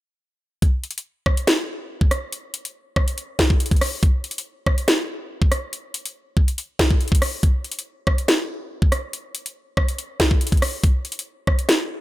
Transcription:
0.62 kick loud
0.62 closed hi-hat medium
0.84 closed hi-hat soft
0.91 closed hi-hat medium
0.98 closed hi-hat medium
1.26 kick loud
1.26 cross-stick loud
1.37 closed hi-hat medium
1.47 snare loud
1.47 closed hi-hat medium
2.01 kick medium
2.11 cross-stick medium
2.11 closed hi-hat medium
2.32 closed hi-hat medium
2.54 closed hi-hat medium
2.65 closed hi-hat medium
2.96 kick loud
2.96 cross-stick loud
3.08 closed hi-hat medium
3.18 closed hi-hat medium
3.39 kick loud
3.39 snare loud
3.50 kick loud
3.60 closed hi-hat medium
3.66 closed hi-hat medium
3.71 kick medium
3.71 closed hi-hat medium
3.76 closed hi-hat soft
3.81 cross-stick medium
3.81 open hi-hat medium
4.03 kick loud
4.03 closed hi-hat medium
4.24 closed hi-hat soft
4.31 closed hi-hat medium
4.38 closed hi-hat medium
4.66 kick loud
4.66 cross-stick loud
4.78 closed hi-hat medium
4.88 snare loud
4.88 closed hi-hat medium
5.42 kick medium
5.52 cross-stick medium
5.52 closed hi-hat medium
5.73 closed hi-hat medium
5.94 closed hi-hat medium
6.05 closed hi-hat medium
6.37 kick loud
6.48 closed hi-hat medium
6.58 closed hi-hat medium
6.79 kick medium
6.79 snare loud
6.91 kick loud
7.01 closed hi-hat soft
7.08 closed hi-hat medium
7.12 kick medium
7.12 closed hi-hat medium
7.22 cross-stick medium
7.22 open hi-hat medium
7.43 kick loud
7.43 closed hi-hat medium
7.64 closed hi-hat soft
7.72 closed hi-hat medium
7.79 closed hi-hat medium
8.07 kick loud
8.07 cross-stick loud
8.18 closed hi-hat medium
8.28 snare loud
8.28 closed hi-hat medium
8.82 kick loud
8.92 cross-stick medium
8.92 closed hi-hat medium
9.13 closed hi-hat medium
9.35 closed hi-hat medium
9.46 closed hi-hat medium
9.77 kick medium
9.77 cross-stick loud
9.88 closed hi-hat medium
9.98 closed hi-hat medium
10.20 kick medium
10.20 snare loud
10.31 kick medium
10.41 closed hi-hat medium
10.47 closed hi-hat medium
10.52 kick medium
10.52 closed hi-hat medium
10.57 closed hi-hat soft
10.62 cross-stick medium
10.62 open hi-hat medium
10.84 kick loud
10.84 closed hi-hat medium
11.05 closed hi-hat soft
11.12 closed hi-hat medium
11.19 closed hi-hat medium
11.47 kick loud
11.47 cross-stick loud
11.59 closed hi-hat medium
11.69 snare loud
11.69 closed hi-hat medium

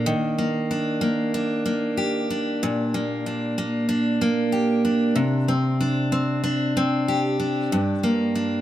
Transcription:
0.00 0.12 A#2 medium
0.00 0.38 A#3 medium
0.00 0.70 D4 medium
0.00 0.13 A4 medium
0.06 2.61 D#3 medium
0.38 1.01 A#3 soft
0.71 1.34 D4 medium
1.01 1.65 A#3 medium
1.34 2.30 D4 medium
1.66 2.94 A#3 medium
1.97 4.52 G4 medium
2.30 3.26 D4 soft
2.63 5.15 A#2 medium
2.94 3.57 A#3 medium
3.26 3.88 D4 medium
3.58 4.20 A#3 medium
3.89 4.84 D4 medium
4.21 5.23 A#3 medium
4.52 7.08 G4 medium
4.85 5.51 D4 soft
5.16 7.70 C3 medium
5.48 6.11 C4 medium
5.81 6.43 D4 medium
6.12 6.75 C4 medium
6.44 7.39 D4 medium
6.77 7.78 C4 medium
7.08 8.61 G4 medium
7.40 8.35 D4 medium
7.72 8.61 G2 medium
8.03 8.61 A#3 medium
8.35 8.61 D4 medium

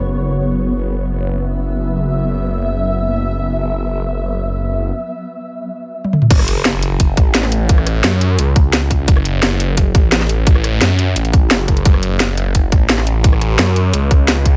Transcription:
0.00 0.74 F#1 medium
0.00 6.27 F#3 medium
0.00 6.27 B3 medium
0.00 0.73 C#5 medium
0.76 4.92 F#1 medium
0.76 6.28 E5 medium
6.04 high tom medium
6.13 mid tom medium
6.22 mid tom medium
6.31 7.16 F#1 loud
6.31 kick loud
6.31 closed hi-hat loud
6.31 crash loud
6.31 sub drop medium
6.39 cross-stick medium
6.48 closed hi-hat medium
6.65 snare loud
6.65 closed hi-hat loud
6.83 closed hi-hat medium
7.00 kick medium
7.00 closed hi-hat loud
7.17 8.03 A1 loud
7.17 kick loud
7.17 closed hi-hat medium
7.35 snare loud
7.35 closed hi-hat loud
7.43 snare soft
7.52 closed hi-hat medium
7.69 kick loud
7.69 closed hi-hat medium
7.78 cross-stick soft
7.87 cross-stick soft
7.87 closed hi-hat medium
8.04 8.37 F#2 loud
8.04 snare loud
8.04 closed hi-hat loud
8.21 closed hi-hat medium
8.39 9.07 C#2 loud
8.39 closed hi-hat medium
8.56 kick loud
8.56 closed hi-hat medium
8.73 snare loud
8.73 closed hi-hat medium
8.91 kick medium
8.91 closed hi-hat medium
9.08 9.93 F#1 loud
9.08 kick loud
9.08 closed hi-hat medium
9.17 cross-stick soft
9.25 closed hi-hat medium
9.43 snare loud
9.43 closed hi-hat medium
9.60 closed hi-hat medium
9.77 kick medium
9.77 closed hi-hat medium
9.95 10.80 A1 loud
9.95 kick loud
9.95 closed hi-hat medium
10.12 snare loud
10.12 closed hi-hat medium
10.21 snare soft
10.29 closed hi-hat medium
10.47 kick loud
10.47 closed hi-hat medium
10.55 cross-stick soft
10.64 cross-stick soft
10.64 closed hi-hat medium
10.81 11.15 F#2 loud
10.81 snare loud
10.81 closed hi-hat medium
10.99 closed hi-hat medium
11.16 11.49 A1 loud
11.16 closed hi-hat medium
11.25 closed hi-hat soft
11.33 kick loud
11.33 closed hi-hat medium
11.51 11.67 F#1 medium
11.51 snare loud
11.51 closed hi-hat medium
11.68 11.84 F#1 loud
11.68 kick medium
11.68 closed hi-hat medium
11.77 closed hi-hat soft
11.85 12.71 F#1 loud
11.85 kick loud
11.85 closed hi-hat medium
11.94 cross-stick soft
12.03 closed hi-hat medium
12.20 snare loud
12.20 closed hi-hat medium
12.37 closed hi-hat medium
12.55 kick medium
12.55 closed hi-hat medium
12.72 13.57 A1 loud
12.72 kick loud
12.72 closed hi-hat medium
12.89 snare loud
12.89 closed hi-hat medium
12.98 snare soft
13.07 closed hi-hat medium
13.24 kick loud
13.24 closed hi-hat medium
13.33 cross-stick soft
13.41 cross-stick soft
13.41 closed hi-hat medium
13.59 13.92 F#2 loud
13.59 snare loud
13.59 closed hi-hat loud
13.76 closed hi-hat medium
13.94 14.57 C#2 loud
13.94 closed hi-hat medium
14.11 kick loud
14.11 closed hi-hat medium
14.28 snare loud
14.28 closed hi-hat medium
14.46 kick medium
14.46 closed hi-hat medium

